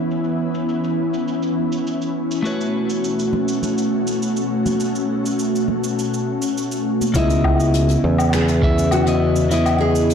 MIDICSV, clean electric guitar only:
0, 0, Header, 1, 2, 480
1, 0, Start_track
1, 0, Key_signature, 4, "minor"
1, 0, Tempo, 588235
1, 77, Time_signature, 4, 2, 24, 8
1, 8275, End_track
2, 0, Start_track
2, 0, Title_t, "Clean electric guitar"
2, 0, Program_c, 0, 27
2, 0, Note_on_c, 0, 61, 66
2, 0, Note_on_c, 0, 75, 56
2, 0, Note_on_c, 0, 76, 73
2, 1959, Note_off_c, 0, 61, 0
2, 1972, Note_off_c, 0, 75, 0
2, 1977, Note_off_c, 0, 76, 0
2, 1979, Note_on_c, 0, 57, 66
2, 1992, Note_on_c, 0, 66, 61
2, 2004, Note_on_c, 0, 71, 57
2, 2015, Note_on_c, 0, 73, 72
2, 5799, Note_off_c, 0, 57, 0
2, 5806, Note_off_c, 0, 66, 0
2, 5812, Note_off_c, 0, 71, 0
2, 5817, Note_off_c, 0, 73, 0
2, 5824, Note_on_c, 0, 49, 71
2, 5837, Note_on_c, 0, 59, 69
2, 5849, Note_on_c, 0, 64, 69
2, 5860, Note_on_c, 0, 75, 84
2, 7002, Note_off_c, 0, 49, 0
2, 7008, Note_off_c, 0, 59, 0
2, 7014, Note_off_c, 0, 64, 0
2, 7020, Note_off_c, 0, 75, 0
2, 7031, Note_on_c, 0, 49, 100
2, 7038, Note_on_c, 0, 59, 90
2, 7044, Note_on_c, 0, 64, 88
2, 7049, Note_on_c, 0, 76, 112
2, 7366, Note_off_c, 0, 49, 0
2, 7370, Note_off_c, 0, 59, 0
2, 7373, Note_off_c, 0, 64, 0
2, 7375, Note_off_c, 0, 76, 0
2, 7394, Note_on_c, 0, 49, 80
2, 7401, Note_on_c, 0, 59, 75
2, 7407, Note_on_c, 0, 64, 73
2, 7413, Note_on_c, 0, 75, 92
2, 7726, Note_off_c, 0, 49, 0
2, 7730, Note_off_c, 0, 59, 0
2, 7733, Note_off_c, 0, 64, 0
2, 7735, Note_off_c, 0, 75, 0
2, 7745, Note_on_c, 0, 49, 77
2, 7757, Note_on_c, 0, 59, 70
2, 7768, Note_on_c, 0, 64, 67
2, 7781, Note_on_c, 0, 75, 89
2, 8275, Note_off_c, 0, 49, 0
2, 8275, Note_off_c, 0, 59, 0
2, 8275, Note_off_c, 0, 64, 0
2, 8275, Note_off_c, 0, 75, 0
2, 8275, End_track
0, 0, End_of_file